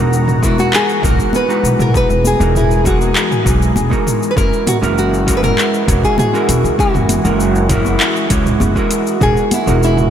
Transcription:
Already playing: upright bass E1, analog synth pad E3 G#3 F#4 A#5, hollow-body jazz guitar G#3 B3 D#4
0.00 hollow-body jazz guitar F#4 A#4
0.13 cabasa
0.28 mid tom, cabasa
0.42 hollow-body jazz guitar G#3 B3 D#4 F#4 A#4, nylon-string guitar E4, kick, cabasa
0.58 nylon-string guitar F#4, high conga, cabasa
0.73 nylon-string guitar G#4, clap, cabasa
0.89 cabasa
1.02 upright bass B1, hollow-body jazz guitar G#3 B3 D#4 F#4 A#4, nylon-string guitar A#4, kick, mid tom, cabasa
1.19 kick, cabasa
1.33 nylon-string guitar B4, high conga, cabasa
1.48 hollow-body jazz guitar G#3 B3 D#4 F#4 B4, cabasa
1.64 upright bass B1, cabasa
1.79 upright bass B1, nylon-string guitar A#4, mid tom, cabasa
1.94 hollow-body jazz guitar G#3 B3 D#4 F#4 B4, analog synth pad G#4, nylon-string guitar B4, kick, cabasa
2.10 upright bass E1, cabasa
2.25 nylon-string guitar G#4, high conga, cabasa
2.39 upright bass E1, hollow-body jazz guitar G#3 B3 D#4 F#4 A#4, cabasa
2.55 nylon-string guitar E4, mid tom, cabasa
2.71 cabasa
2.84 hollow-body jazz guitar G#3 B3 D#4 F#4 A#4, nylon-string guitar F#4, kick, low conga, cabasa
3.01 high conga, cabasa
3.16 clap, cabasa
3.31 mid tom, cabasa
3.44 upright bass B1, hollow-body jazz guitar G#3 B3 D#4 F#4 B4, kick, cabasa
3.62 cabasa
3.76 upright bass E1, high conga, cabasa
3.90 hollow-body jazz guitar G#3 B3 D#4 F#4 A#4, kick, cabasa
4.07 mid tom, cabasa
4.23 cabasa
4.31 nylon-string guitar B4
4.36 upright bass F#1, analog synth pad E3 G#3 F#4, hollow-body jazz guitar G#3 C#4 E4 F#4 A#4, nylon-string guitar A#4, kick, cabasa
4.53 cabasa
4.67 nylon-string guitar F#4, closed hi-hat, mid tom, high conga, cabasa
4.81 upright bass F#1, hollow-body jazz guitar G#3 C#4 E4 F#4 A#4, cabasa
4.98 nylon-string guitar F#4, cabasa
5.14 cabasa
5.26 hollow-body jazz guitar G#3 C#4 E4 F#4 A#4, kick, closed hi-hat, cabasa
5.37 nylon-string guitar B4
5.43 nylon-string guitar A#4, mid tom, high conga, cabasa
5.58 clap, cabasa
5.74 cabasa
5.87 upright bass E1, hollow-body jazz guitar G#3 C#4 E4 F#4 C#5, kick, closed hi-hat, cabasa
6.03 nylon-string guitar G#4, kick, cabasa
6.18 nylon-string guitar G#4, mid tom, high conga, cabasa
6.33 hollow-body jazz guitar G#3 C#4 E4 F#4 A#4, cabasa
6.49 upright bass E1, closed hi-hat, cabasa
6.64 upright bass C#2, cabasa
6.78 hollow-body jazz guitar G#3 C#4 E4 F#4 A#4, nylon-string guitar F#4, kick, cabasa
6.94 upright bass F#1, mid tom, cabasa
7.09 closed hi-hat, high conga, cabasa
7.24 upright bass F#1, hollow-body jazz guitar G#3 C#4 E4 F#4 A#4, cabasa
7.40 cabasa
7.55 cabasa
7.69 hollow-body jazz guitar G#3 C#4 E4 F#4 A#4, kick, closed hi-hat, mid tom, cabasa
7.85 high conga, cabasa
8.00 clap, cabasa
8.16 cabasa
8.29 upright bass C#2, hollow-body jazz guitar G#3 C#4 E4 F#4 C#5, kick, closed hi-hat, cabasa
8.46 mid tom, cabasa
8.60 upright bass F#1, high conga, cabasa
8.75 hollow-body jazz guitar G#3 C#4 E4 F#4 A#4, kick, cabasa
8.91 closed hi-hat, cabasa
9.07 cabasa
9.20 upright bass E1, analog synth pad E3, hollow-body jazz guitar G#3 B3 D#4 F#4 A#4, nylon-string guitar G#4, kick, mid tom, cabasa
9.37 cabasa
9.51 nylon-string guitar E4, closed hi-hat, high conga, cabasa
9.66 upright bass E1, hollow-body jazz guitar G#3 B3 D#4 F#4 A#4, cabasa
9.83 nylon-string guitar E4, cabasa
9.97 mid tom, cabasa

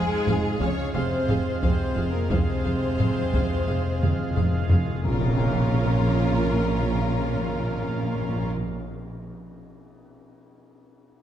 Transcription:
Already playing: trombone section G#2, french horn section G#3, pipe organ G#3 F4 G#4 F5, flute section G#4, violin section G#4
0.04 timpani F2
0.12 timpani F2
0.26 double bass section F1, cello section F2, timpani F2, viola section G#4 F5, taiko low-mid
0.34 timpani F2
0.42 timpani F2
0.49 timpani F2
0.56 timpani F2, trombone section C#3, french horn section C#4, flute section C#5
0.60 double bass section F1, cello section F2, timpani F2, viola section G#4 F5, violin section C#5, taiko
0.72 timpani F2
0.79 timpani F2
0.87 timpani F2
0.92 double bass section F1, cello section F2, timpani F2, trombone section C3, french horn section C4, viola section G#4 F5, flute section C5, violin section C5
1.01 timpani F2
1.09 timpani F2
1.24 timpani F2
1.28 double bass section F1, cello section F2, viola section G#4 F5, taiko low-mid
1.39 timpani F2
1.47 timpani F2
1.54 timpani F2
1.59 double bass section F1, timpani F2, trombone section C3, french horn section C4, viola section G#4 F5, violin section C5
1.63 cello section F2, flute section C5, taiko
1.70 timpani F2
1.77 timpani F2
1.85 timpani F2
1.92 timpani F2, cello section F2, viola section G#4 F5
1.97 double bass section F1, timpani F2
2.07 timpani F2
2.12 timpani F2, trombone section A#2, french horn section A#3, violin section A#4, flute section A#4
2.23 timpani F2
2.27 double bass section F1, cello section F2, timpani F2, trombone section C3, french horn section C4, viola section G#4 F5, flute section C5, violin section C5, taiko
2.38 timpani F2
2.45 timpani F2
2.54 timpani F2
2.61 double bass section F1, timpani F2, cello section F2, viola section G#4 F5
2.70 timpani F2
2.77 timpani F2
2.85 timpani F2
2.92 timpani F2
2.98 double bass section F1, cello section F2, timpani F2, viola section G#4 F5, taiko low-mid
3.08 timpani F2
3.15 timpani F2
3.23 timpani F2
3.31 double bass section F1, timpani F2, cello section F2, viola section G#4 F5, taiko
3.38 timpani F2
3.46 timpani F2
3.54 timpani F2
3.61 timpani F2
3.67 double bass section F1, cello section F2, timpani F2, viola section G#4 F5
3.76 timpani F2
3.85 timpani F2
3.91 timpani F2
3.99 double bass section F1, timpani F2, cello section F2, viola section G#4 F5
4.03 timpani F2, taiko mid
4.14 timpani F2
4.22 timpani F2
4.30 timpani F2
4.36 double bass section F1, cello section F2, timpani F2, viola section G#4 F5, taiko low-mid
4.44 timpani F2
4.52 timpani F2
4.60 timpani F2
4.68 double bass section F1, timpani F2, cello section F2, viola section G#4 F5, taiko low
4.75 timpani F2
4.83 timpani F2
4.92 timpani F2
5.03 double bass section A#1, cello section A#2, timpani A#2, trombone section A#3, viola section C#4 F4, pipe organ C#4 F4 A#4 F5, violin section F4 A#4, french horn section A#4, flute section A#5, tam-tam, impact
5.13 timpani A#2
5.19 timpani A#2
5.26 timpani A#2
5.33 timpani A#2
5.40 timpani A#2
5.47 timpani A#2
5.54 timpani A#2
5.61 timpani A#2
5.67 timpani A#2
5.74 timpani A#2
5.80 timpani A#2
5.87 timpani A#2
5.94 timpani A#2
6.01 timpani A#2
6.07 timpani A#2
6.14 timpani A#2
6.20 timpani A#2
6.26 timpani A#2
6.33 timpani A#2
6.40 timpani A#2
6.47 timpani A#2
6.53 timpani A#2
6.67 timpani A#2
6.74 timpani A#2
6.81 timpani A#2
6.88 timpani A#2
6.95 timpani A#2
7.01 timpani A#2
7.08 timpani A#2
7.15 timpani A#2
7.28 timpani A#2
7.35 timpani A#2
7.42 timpani A#2
7.49 timpani A#2
7.55 timpani A#2
7.62 timpani A#2
7.69 timpani A#2
7.75 timpani A#2
7.82 timpani A#2
7.88 timpani A#2
7.95 timpani A#2
8.02 timpani A#2
8.09 timpani A#2
8.15 timpani A#2
8.21 timpani A#2
8.29 timpani A#2
8.36 timpani A#2
8.43 timpani A#2
8.49 timpani A#2
8.57 timpani A#2
8.64 timpani A#2
8.71 timpani A#2

